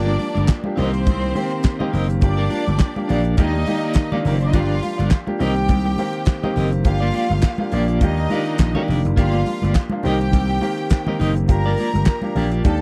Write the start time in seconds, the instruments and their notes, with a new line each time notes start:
Already playing: slap bass G1, grand piano F3 A#3 D4 G4, clean electric guitar D4 F4 A#4 D5, violin section D4 D5
0.07 muted conga
0.19 open hi-hat, high conga
0.35 slap bass G1, clean electric guitar D4 F4 A#4 D5, closed hi-hat, high conga
0.47 kick, snare, clap, closed hi-hat
0.64 grand piano F3 A#3 D4 G4, muted clean electric guitar stroke, muted conga, high conga
0.76 slap bass C2, grand piano D#3 A#3 C4 G4, clean electric guitar C4 G4 A#4 D#5, violin section C4 C5, open hi-hat, low conga
0.93 muted clean electric guitar stroke, closed hi-hat
1.06 slap bass C2, muted clean electric guitar stroke, kick, closed hi-hat, muted conga, high conga
1.22 muted clean electric guitar stroke, muted conga
1.34 grand piano D#3 A#3 C4 G4, open hi-hat, high conga
1.51 muted clean electric guitar stroke, closed hi-hat
1.63 muted clean electric guitar stroke, kick, snare, clap, closed hi-hat
1.79 grand piano D#3 A#3 C4 G4, clean electric guitar C4 G4 A#4 D#5, high conga, low conga
1.92 slap bass F#1, clean electric guitar C4 G4 A#4 D#5, open hi-hat, low conga
2.09 muted clean electric guitar stroke, closed hi-hat
2.21 slap bass G1, grand piano F3 A#3 D4 G4, violin section D4 D5, muted clean electric guitar stroke, kick, closed hi-hat
2.37 clean electric guitar D4 F4 A#4 D5, muted conga
2.50 clean electric guitar D4 F4 A#4 D5, open hi-hat, high conga
2.67 slap bass G1, muted clean electric guitar stroke, closed hi-hat, high conga
2.79 muted clean electric guitar stroke, kick, snare, clap, closed hi-hat
2.96 grand piano F3 A#3 D4 G4, muted clean electric guitar stroke, high conga
3.08 slap bass A#1, grand piano F3 A#3 D4 G4, clean electric guitar D4 F4 A#4 D5, open hi-hat, low conga
3.25 clean electric guitar D4 F4, closed hi-hat
3.37 slap bass D#2, grand piano D#3 A#3 D4 G4, clean electric guitar A#3 D#4 G4 D5, violin section D#4 D#5, kick, closed hi-hat, high conga
3.54 muted clean electric guitar stroke, muted conga
3.66 grand piano D#3 A#3 D#4 G4, muted clean electric guitar stroke, open hi-hat, high conga
3.81 clean electric guitar A#3 D#4 G4 D5, closed hi-hat
3.93 kick, snare, clap, closed hi-hat, muted conga
4.12 grand piano D#3 A#3 D4 F4, clean electric guitar A#3 D#4 G4 D5, muted conga, high conga, low conga
4.25 slap bass F#1, clean electric guitar A#3 D#4 G4 D5, violin section A#3 A#4, open hi-hat, low conga
4.33 violin section C4 C5
4.40 violin section D4 D5, muted clean electric guitar stroke, closed hi-hat
4.47 violin section D#4 D#5
4.53 slap bass G1, grand piano F3 A#3 D4 G4, clean electric guitar D4 F4 A#4 D5, violin section F4 F5, kick, closed hi-hat, muted conga
4.82 muted clean electric guitar stroke, open hi-hat, high conga
4.98 slap bass G1, clean electric guitar D4 F4 A#4 D5, closed hi-hat, high conga
5.10 kick, snare, clap, closed hi-hat, muted conga
5.26 grand piano F3 A#3 D4 G4, muted clean electric guitar stroke, high conga
5.39 slap bass C2, grand piano D#3 A#3 C4 G4, clean electric guitar C4 G4 A#4 D#5, violin section G4 G5, open hi-hat, low conga
5.56 muted clean electric guitar stroke, closed hi-hat
5.68 slap bass C2, muted clean electric guitar stroke, kick, closed hi-hat, muted conga, high conga
5.85 muted clean electric guitar stroke, muted conga
5.98 grand piano D#3 A#3 C4 G4, open hi-hat, high conga
6.13 muted clean electric guitar stroke, closed hi-hat
6.25 muted clean electric guitar stroke, kick, snare, clap, closed hi-hat, muted conga
6.43 grand piano D#3 A#3 C4 G4, clean electric guitar C4 G4 A#4 D#5, muted conga, high conga, low conga
6.55 slap bass F#1, clean electric guitar C4 G4 A#4 D#5, open hi-hat, low conga
6.72 closed hi-hat
6.84 slap bass G1, grand piano F3 A#3 D4 G4, violin section F4 F5, muted clean electric guitar stroke, kick, closed hi-hat, muted conga
7.00 clean electric guitar A#3 F4 G4 D5
7.13 clean electric guitar A#3 F4 G4 D5, open hi-hat, high conga
7.30 slap bass G1, closed hi-hat, high conga
7.42 muted clean electric guitar stroke, kick, snare, clap, closed hi-hat, muted conga
7.58 grand piano F3 A#3 D4 G4, muted clean electric guitar stroke, muted conga, high conga
7.72 slap bass A#1, grand piano F3 A#3 D4 F4, clean electric guitar A#3 F4 G4 D5, open hi-hat, low conga
7.88 clean electric guitar A#3 F4 G4 D5, closed hi-hat
8.01 slap bass D#2, grand piano D#3 A#3 D4 G4, violin section D#4 D#5, muted clean electric guitar stroke, kick, closed hi-hat, muted conga, high conga
8.17 muted clean electric guitar stroke, muted conga
8.30 grand piano D#3 A#3 D#4 F4, clean electric guitar D4 G4 A#4 D5, open hi-hat, high conga
8.46 clean electric guitar D4 G4, closed hi-hat
8.58 slap bass A#1, muted clean electric guitar stroke, kick, snare, clap, closed hi-hat
8.75 grand piano D#3 A#3 D4 G4, clean electric guitar D4 G4 A#4 D5, high conga, low conga
8.88 slap bass F1, clean electric guitar D4 G4 A#4 D5, open hi-hat, low conga
9.05 slap bass F#1, muted clean electric guitar stroke, closed hi-hat
9.16 slap bass G1, grand piano F3 A#3 D4 G4, clean electric guitar A#3 F4 G4 D5, violin section F4 F5, kick, closed hi-hat
9.33 muted conga
9.46 muted clean electric guitar stroke, open hi-hat, high conga
9.62 slap bass G1, clean electric guitar A#3 F4 G4 D5, closed hi-hat, high conga
9.74 kick, snare, clap, closed hi-hat, muted conga
9.90 grand piano F3 A#3 D4 F4, muted clean electric guitar stroke, high conga
10.03 slap bass C2, grand piano D#3 A#3 C4 G4, clean electric guitar D#4 G4 A#4 D#5, violin section G4 G5, open hi-hat, low conga
10.21 closed hi-hat
10.32 slap bass C2, muted clean electric guitar stroke, kick, closed hi-hat, high conga
10.49 muted clean electric guitar stroke, muted conga
10.61 grand piano D#3 A#3 C4 G4, open hi-hat, high conga
10.78 muted clean electric guitar stroke, closed hi-hat
10.90 muted clean electric guitar stroke, kick, snare, clap, closed hi-hat, muted conga
11.06 grand piano D#3 A#3 C4 G4, clean electric guitar D#4 G4 A#4 D#5, muted conga, high conga, low conga
11.19 slap bass F#1, clean electric guitar D#4 G4 A#4 D#5, open hi-hat, low conga
11.36 muted clean electric guitar stroke, closed hi-hat
11.48 slap bass G1, grand piano F3 A#3 D4 G4, violin section A#4 A#5, muted clean electric guitar stroke, kick, closed hi-hat, muted conga
11.65 clean electric guitar A#3 F4 G4 D5, muted conga
11.77 clean electric guitar A#3 F4 G4 D5, open hi-hat, high conga
11.94 slap bass G1, closed hi-hat, high conga
12.05 muted clean electric guitar stroke, kick, snare, clap, closed hi-hat, muted conga
12.22 grand piano F3 A#3 D4 G4, muted clean electric guitar stroke, high conga
12.35 slap bass A#1, grand piano F3 A#3 D4 G4, clean electric guitar A#3 F4 G4 D5, open hi-hat, low conga
12.52 clean electric guitar A#3 F4 G4 D5, closed hi-hat
12.64 slap bass D#2, grand piano D#3 A#3 D4 G4, violin section A4 A5, muted clean electric guitar stroke, kick, closed hi-hat, high conga